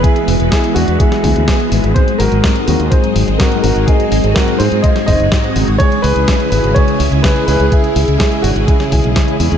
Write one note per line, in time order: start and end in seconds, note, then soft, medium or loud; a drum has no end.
0.00 1.92 E3 medium
0.00 9.58 G#3 medium
0.00 0.21 G#3 medium
0.00 1.92 B3 medium
0.00 0.21 B3 medium
0.00 0.21 E4 medium
0.00 0.49 G#4 loud
0.00 0.21 G#4 medium
0.00 1.92 B4 medium
0.00 kick loud
0.00 closed hi-hat medium
0.04 0.49 E4 medium
0.04 1.94 F#4 medium
0.16 closed hi-hat soft
0.28 0.36 E1 medium
0.28 open hi-hat loud
0.40 0.48 E1 medium
0.40 0.73 G#3 loud
0.40 0.73 B3 medium
0.40 0.73 E4 medium
0.40 0.73 G#4 loud
0.40 closed hi-hat soft
0.51 0.75 E4 medium
0.51 0.76 G#4 medium
0.51 kick loud
0.51 snare loud
0.51 closed hi-hat loud
0.64 closed hi-hat soft
0.75 0.84 E2 medium
0.75 1.09 G#3 medium
0.75 1.09 B3 medium
0.75 0.99 D4 medium
0.75 1.09 E4 medium
0.75 1.00 F#4 medium
0.75 open hi-hat loud
0.88 0.96 E2 medium
0.88 closed hi-hat soft
0.99 1.23 E4 medium
0.99 1.21 G#4 medium
0.99 kick loud
0.99 closed hi-hat loud
1.12 1.45 G#3 medium
1.12 1.45 B3 medium
1.12 1.45 E4 medium
1.12 1.45 G#4 medium
1.12 snare soft
1.12 closed hi-hat soft
1.23 1.32 D2 loud
1.23 1.69 E4 medium
1.23 1.68 G#4 medium
1.23 kick medium
1.23 open hi-hat loud
1.36 1.44 D2 medium
1.36 closed hi-hat soft
1.48 1.69 G#3 loud
1.48 1.69 B3 medium
1.48 1.69 E4 medium
1.48 1.69 G#4 loud
1.48 kick loud
1.48 snare loud
1.48 closed hi-hat loud
1.60 closed hi-hat soft
1.72 1.80 G#1 medium
1.72 1.92 G#2 loud
1.72 1.92 G#3 medium
1.72 1.92 B3 medium
1.72 1.92 E4 medium
1.72 1.92 G#4 loud
1.72 open hi-hat loud
1.84 1.92 G#1 medium
1.84 closed hi-hat soft
1.94 2.13 G#2 medium
1.94 5.76 F#3 medium
1.94 5.76 C4 medium
1.94 2.13 C4 medium
1.94 5.76 D#4 medium
1.94 2.13 D#4 medium
1.94 2.13 F#4 medium
1.94 9.58 G#4 medium
1.94 2.19 G#4 medium
1.94 2.20 C5 loud
1.94 kick loud
1.94 closed hi-hat medium
2.08 closed hi-hat soft
2.18 2.28 G#1 medium
2.18 2.65 F#4 medium
2.18 2.65 A#4 loud
2.18 open hi-hat loud
2.32 2.40 G#1 medium
2.32 2.65 G#2 loud
2.32 2.65 G#3 medium
2.32 2.65 C4 medium
2.32 2.65 D#4 medium
2.32 2.65 F#4 loud
2.32 closed hi-hat soft
2.44 kick loud
2.44 snare loud
2.44 closed hi-hat loud
2.56 closed hi-hat soft
2.66 2.76 D#2 medium
2.66 3.01 G#2 medium
2.66 3.01 G#3 medium
2.66 3.01 C4 medium
2.66 3.01 D#4 medium
2.66 3.01 F4 loud
2.66 2.91 F#4 medium
2.66 2.92 A#4 medium
2.66 open hi-hat loud
2.80 2.88 D#2 medium
2.80 closed hi-hat soft
2.90 3.37 G#4 medium
2.90 3.41 C5 medium
2.90 kick loud
2.90 closed hi-hat loud
3.04 3.37 G#2 medium
3.04 3.37 G#3 medium
3.04 3.37 C4 medium
3.04 3.37 D#4 medium
3.04 3.37 F#4 medium
3.04 closed hi-hat soft
3.16 3.24 G#1 medium
3.16 open hi-hat loud
3.28 3.36 G#1 medium
3.28 closed hi-hat soft
3.38 3.61 G#2 medium
3.38 3.61 G#3 medium
3.38 3.61 C4 medium
3.38 3.61 D#4 medium
3.38 3.61 F#4 loud
3.38 3.63 F#4 medium
3.38 3.61 A#4 loud
3.38 kick loud
3.38 snare loud
3.38 closed hi-hat medium
3.52 closed hi-hat soft
3.62 3.72 G#1 loud
3.62 3.84 G#2 loud
3.62 3.84 G#3 medium
3.62 3.84 C4 medium
3.62 3.84 D#4 medium
3.62 3.84 F#4 loud
3.62 3.86 F#4 medium
3.62 3.88 A#4 medium
3.62 open hi-hat loud
3.76 3.84 G#1 medium
3.76 closed hi-hat soft
3.86 4.05 G#2 medium
3.86 4.05 G#3 medium
3.86 4.05 C4 medium
3.86 4.05 D#4 medium
3.86 4.33 D#4 medium
3.86 4.05 F#4 medium
3.86 4.36 G#4 loud
3.86 kick loud
3.86 closed hi-hat medium
4.00 closed hi-hat soft
4.12 4.20 G#1 medium
4.12 open hi-hat loud
4.24 4.32 G#1 medium
4.24 4.57 G#2 loud
4.24 4.57 G#3 medium
4.24 4.57 C4 medium
4.24 4.57 D#4 medium
4.24 4.57 F#4 loud
4.24 closed hi-hat soft
4.34 4.58 F#4 medium
4.34 4.60 A#4 medium
4.34 kick loud
4.34 snare loud
4.34 closed hi-hat loud
4.48 closed hi-hat soft
4.58 4.93 G#2 medium
4.58 4.68 G#2 medium
4.58 4.93 G#3 medium
4.58 4.93 C4 medium
4.58 4.93 D#4 medium
4.58 4.93 F4 loud
4.58 4.83 G#4 medium
4.58 4.83 C5 loud
4.58 open hi-hat loud
4.72 4.80 G#2 medium
4.72 closed hi-hat soft
4.82 4.90 C5 medium
4.82 4.88 D#5 loud
4.82 kick loud
4.82 closed hi-hat medium
4.96 5.29 G#2 medium
4.96 5.29 G#3 medium
4.96 5.29 C4 medium
4.96 5.29 D#4 medium
4.96 5.29 F#4 medium
4.96 snare soft
4.96 closed hi-hat soft
5.06 5.16 F#1 medium
5.06 5.53 C5 medium
5.06 5.52 D#5 loud
5.06 kick medium
5.06 open hi-hat loud
5.20 5.28 F#1 medium
5.20 closed hi-hat soft
5.32 5.53 G#2 medium
5.32 5.53 G#3 medium
5.32 5.53 C4 medium
5.32 5.53 D#4 medium
5.32 5.53 F#4 loud
5.32 kick loud
5.32 snare loud
5.32 closed hi-hat medium
5.44 closed hi-hat soft
5.56 5.64 G#1 medium
5.56 5.76 C#3 loud
5.56 5.76 G#3 medium
5.56 5.76 C4 medium
5.56 5.76 D#4 medium
5.56 5.76 F#4 loud
5.56 open hi-hat loud
5.68 5.76 G#1 medium
5.68 closed hi-hat soft
5.78 9.58 C#3 medium
5.78 5.97 C#3 medium
5.78 9.58 E3 medium
5.78 5.97 G#3 medium
5.78 9.58 E4 medium
5.78 5.97 E4 medium
5.78 5.97 G#4 medium
5.78 6.03 G#4 medium
5.78 6.04 C#5 loud
5.78 kick loud
5.78 closed hi-hat medium
5.92 closed hi-hat soft
6.02 6.12 C#2 medium
6.02 6.49 G#4 medium
6.02 6.48 B4 loud
6.02 open hi-hat loud
6.16 6.24 C#2 medium
6.16 6.49 C#3 loud
6.16 6.49 G#3 medium
6.16 6.49 C#4 medium
6.16 6.49 E4 medium
6.16 6.49 G#4 loud
6.16 closed hi-hat soft
6.28 kick loud
6.28 snare loud
6.28 closed hi-hat medium
6.40 closed hi-hat soft
6.50 6.60 G#1 medium
6.50 6.85 C#3 medium
6.50 6.85 G#3 medium
6.50 6.85 C#4 medium
6.50 6.85 E4 medium
6.50 6.85 F#4 medium
6.50 6.75 G#4 medium
6.50 6.73 B4 loud
6.50 open hi-hat loud
6.64 6.72 G#1 medium
6.64 closed hi-hat soft
6.74 7.21 G#4 medium
6.74 7.25 C#5 loud
6.74 kick loud
6.74 closed hi-hat medium
6.88 7.21 C#3 medium
6.88 7.21 G#3 medium
6.88 7.21 C#4 medium
6.88 7.21 E4 medium
6.88 7.21 G#4 medium
6.88 closed hi-hat soft
7.00 7.08 C#2 medium
7.00 open hi-hat loud
7.12 7.20 C#2 medium
7.12 closed hi-hat soft
7.22 7.45 C#3 loud
7.22 7.45 G#3 medium
7.22 7.45 C#4 medium
7.22 7.45 E4 medium
7.22 7.45 G#4 loud
7.22 7.47 G#4 medium
7.22 7.45 B4 loud
7.22 kick loud
7.22 snare loud
7.22 closed hi-hat medium
7.36 closed hi-hat soft
7.46 7.56 C#2 medium
7.46 7.68 C#3 loud
7.46 7.68 G#3 medium
7.46 7.68 C#4 medium
7.46 7.68 E4 medium
7.46 7.68 G#4 loud
7.46 7.69 G#4 medium
7.46 7.72 B4 loud
7.46 open hi-hat loud
7.60 7.68 C#2 medium
7.60 closed hi-hat soft
7.71 7.89 C#3 medium
7.71 7.89 G#3 medium
7.71 7.89 C#4 medium
7.71 7.89 E4 medium
7.71 8.17 E4 medium
7.71 8.16 G#4 medium
7.71 7.89 G#4 medium
7.71 kick loud
7.71 closed hi-hat medium
7.84 closed hi-hat soft
7.96 8.04 C#2 medium
7.96 open hi-hat loud
8.08 8.16 C#2 medium
8.08 8.41 C#3 medium
8.08 8.41 G#3 medium
8.08 8.41 C#4 medium
8.08 8.41 E4 medium
8.08 8.41 G#4 loud
8.08 closed hi-hat soft
8.18 8.43 E4 medium
8.18 8.44 G#4 medium
8.18 kick loud
8.18 snare loud
8.18 closed hi-hat medium
8.32 closed hi-hat soft
8.42 8.52 G#1 loud
8.42 8.77 C#3 medium
8.42 8.77 G#3 medium
8.42 8.77 C#4 medium
8.42 8.50 D4 medium
8.42 8.77 E4 medium
8.42 8.48 F#4 medium
8.42 8.77 F#4 loud
8.42 open hi-hat loud
8.56 8.64 G#1 medium
8.56 closed hi-hat soft
8.66 8.91 E4 medium
8.66 8.89 G#4 medium
8.66 kick loud
8.66 closed hi-hat medium
8.80 9.13 C#3 medium
8.80 9.13 G#3 medium
8.80 9.13 C#4 medium
8.80 9.13 E4 medium
8.80 9.13 G#4 medium
8.80 snare soft
8.80 closed hi-hat soft
8.90 9.00 B1 medium
8.90 9.37 E4 medium
8.90 9.36 G#4 medium
8.90 kick medium
8.90 open hi-hat loud
9.04 9.12 B1 medium
9.04 closed hi-hat soft
9.16 9.37 C#3 loud
9.16 9.37 G#3 medium
9.16 9.37 C#4 medium
9.16 9.37 E4 medium
9.16 9.37 G#4 loud
9.16 kick loud
9.16 snare loud
9.16 closed hi-hat medium
9.28 closed hi-hat soft
9.40 9.48 E2 medium
9.40 9.58 G#3 loud
9.40 9.58 C#4 medium
9.40 9.58 E4 medium
9.40 9.58 G#4 loud
9.40 open hi-hat loud
9.52 9.58 E2 medium
9.52 closed hi-hat soft